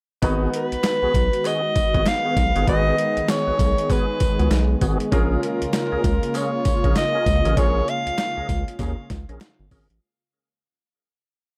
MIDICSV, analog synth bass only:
0, 0, Header, 1, 2, 480
1, 0, Start_track
1, 0, Tempo, 612245
1, 176, Time_signature, 4, 2, 24, 8
1, 9077, End_track
2, 0, Start_track
2, 0, Title_t, "Analog synth bass"
2, 0, Program_c, 0, 38
2, 178, Note_on_c, 0, 32, 121
2, 369, Note_off_c, 0, 32, 0
2, 566, Note_on_c, 0, 35, 47
2, 602, Note_off_c, 0, 35, 0
2, 803, Note_on_c, 0, 35, 54
2, 840, Note_off_c, 0, 35, 0
2, 897, Note_on_c, 0, 35, 96
2, 1015, Note_off_c, 0, 35, 0
2, 1378, Note_on_c, 0, 32, 49
2, 1437, Note_off_c, 0, 32, 0
2, 1525, Note_on_c, 0, 32, 92
2, 1598, Note_off_c, 0, 32, 0
2, 1855, Note_on_c, 0, 35, 90
2, 1974, Note_off_c, 0, 35, 0
2, 2004, Note_on_c, 0, 31, 102
2, 2078, Note_off_c, 0, 31, 0
2, 2098, Note_on_c, 0, 32, 107
2, 2289, Note_off_c, 0, 32, 0
2, 2485, Note_on_c, 0, 35, 53
2, 2522, Note_off_c, 0, 35, 0
2, 2724, Note_on_c, 0, 35, 57
2, 2761, Note_off_c, 0, 35, 0
2, 2817, Note_on_c, 0, 35, 83
2, 2935, Note_off_c, 0, 35, 0
2, 3299, Note_on_c, 0, 37, 50
2, 3358, Note_off_c, 0, 37, 0
2, 3445, Note_on_c, 0, 37, 85
2, 3519, Note_off_c, 0, 37, 0
2, 3536, Note_on_c, 0, 35, 114
2, 3728, Note_off_c, 0, 35, 0
2, 3776, Note_on_c, 0, 32, 94
2, 3894, Note_off_c, 0, 32, 0
2, 4017, Note_on_c, 0, 34, 121
2, 4209, Note_off_c, 0, 34, 0
2, 4406, Note_on_c, 0, 37, 51
2, 4442, Note_off_c, 0, 37, 0
2, 4645, Note_on_c, 0, 37, 56
2, 4682, Note_off_c, 0, 37, 0
2, 4737, Note_on_c, 0, 37, 86
2, 4855, Note_off_c, 0, 37, 0
2, 5218, Note_on_c, 0, 34, 45
2, 5277, Note_off_c, 0, 34, 0
2, 5363, Note_on_c, 0, 34, 87
2, 5438, Note_off_c, 0, 34, 0
2, 5695, Note_on_c, 0, 37, 88
2, 5814, Note_off_c, 0, 37, 0
2, 5843, Note_on_c, 0, 33, 99
2, 5917, Note_off_c, 0, 33, 0
2, 5936, Note_on_c, 0, 34, 120
2, 6128, Note_off_c, 0, 34, 0
2, 6323, Note_on_c, 0, 37, 50
2, 6361, Note_off_c, 0, 37, 0
2, 6564, Note_on_c, 0, 37, 55
2, 6601, Note_off_c, 0, 37, 0
2, 6656, Note_on_c, 0, 37, 92
2, 6774, Note_off_c, 0, 37, 0
2, 6894, Note_on_c, 0, 39, 108
2, 7013, Note_off_c, 0, 39, 0
2, 7137, Note_on_c, 0, 37, 93
2, 7255, Note_off_c, 0, 37, 0
2, 7283, Note_on_c, 0, 34, 95
2, 7357, Note_off_c, 0, 34, 0
2, 7523, Note_on_c, 0, 31, 86
2, 7597, Note_off_c, 0, 31, 0
2, 7615, Note_on_c, 0, 32, 90
2, 7734, Note_off_c, 0, 32, 0
2, 7763, Note_on_c, 0, 33, 81
2, 7838, Note_off_c, 0, 33, 0
2, 9077, End_track
0, 0, End_of_file